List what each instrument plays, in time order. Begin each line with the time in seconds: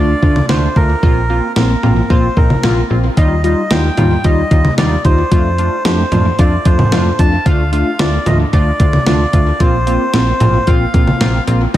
Already playing: fm bass D2, analog polysynth A3 D4 F4, melodica D5
0.22 fm bass D2, analog polysynth A3 D4 F4, kick
0.36 mid tom
0.49 fm bass D2, analog polysynth A3 D4 F4, melodica C5, snare
0.76 fm bass D2, analog polysynth A3 D4 F4, melodica A#4, kick
1.03 fm bass A#1, analog polysynth A#3 C4 F4, kick
1.30 analog polysynth A#3 C4 F4
1.56 fm bass A#1, analog polysynth A#3 C4 F4, melodica A#4, snare
1.83 fm bass A#1, analog polysynth A#3 C4 F4, mid tom
2.10 fm bass A#1, analog polysynth A#3 C4 F4, melodica C5, kick
2.37 fm bass A#1, analog polysynth A#3 C4 D#4, melodica A#4, kick
2.50 mid tom
2.63 fm bass A#1, analog polysynth A#3 C4 F4, snare
2.90 fm bass A#1, analog polysynth A#3 C4 F4
3.17 fm bass D#2, analog polysynth G3 D#4 F4, melodica D#5, kick, closed hi-hat
3.44 analog polysynth G3 D#4 F4, melodica D#5, closed hi-hat
3.71 fm bass D#2, analog polysynth G3 D#4 F4, melodica G5, snare, closed hi-hat
3.97 fm bass D#2, analog polysynth G3 D#4 F4, closed hi-hat, mid tom
4.24 fm bass D#2, analog polysynth G3 D#4 F4, melodica D#5, kick, closed hi-hat
4.51 fm bass D#2, analog polysynth G3 D#4 F4, kick, closed hi-hat
4.65 mid tom
4.78 fm bass D#2, analog polysynth G3 D#4 F4, melodica D5, snare, closed hi-hat
5.05 fm bass D#2, analog polysynth G3 D#4 F4, melodica C5, kick, closed hi-hat
5.31 fm bass F2, analog polysynth A3 D4 F4, kick, closed hi-hat
5.58 analog polysynth A3 D4 F4, closed hi-hat
5.85 fm bass F2, analog polysynth A3 D4 G4, melodica C5, snare, closed hi-hat
6.12 fm bass F2, analog polysynth A3 D4 F4, closed hi-hat, mid tom
6.39 fm bass F2, analog polysynth A3 D4 F4, melodica D5, kick, closed hi-hat
6.65 fm bass F2, analog polysynth A3 D4 F4, melodica C5, kick, closed hi-hat
6.79 mid tom
6.92 fm bass F2, analog polysynth A3 D4 F4, snare, closed hi-hat
7.19 fm bass F2, analog polysynth A3 D4 F4, melodica A5, kick, closed hi-hat
7.46 fm bass D2, analog polysynth A3 D4 F4, melodica F5, kick, closed hi-hat
7.72 analog polysynth A3 D4 F4, melodica F5, closed hi-hat
7.99 fm bass D2, analog polysynth A3 D4 F4, melodica D5, snare, closed hi-hat
8.26 fm bass D2, analog polysynth A3 D4 F4, melodica D#5, closed hi-hat, mid tom
8.53 fm bass D2, analog polysynth A3 D4 F4, melodica D5, kick, closed hi-hat
8.80 fm bass D2, analog polysynth A3 D4 F4, kick, closed hi-hat
8.93 mid tom
9.06 fm bass D2, analog polysynth A3 D4 F4, melodica D5, snare, closed hi-hat
9.33 fm bass D2, analog polysynth A3 D4 F4, kick, closed hi-hat
9.60 fm bass A#1, analog polysynth A#3 C4 F4, melodica C5, kick, closed hi-hat
9.87 analog polysynth A#3 C4 F4, closed hi-hat
10.13 fm bass A#1, analog polysynth A#3 C4 F4, snare, closed hi-hat
10.40 fm bass A#1, analog polysynth A#3 C4 F4, closed hi-hat, mid tom
10.67 fm bass A#1, analog polysynth A#3 C4 F4, melodica F5, kick, closed hi-hat
10.94 fm bass A#1, analog polysynth A#3 C4 F4, kick, closed hi-hat
11.08 mid tom
11.20 fm bass A#1, analog polysynth A#3 C4 F4, snare, closed hi-hat
11.47 fm bass A#1, analog polysynth A#3 C4 F4, closed hi-hat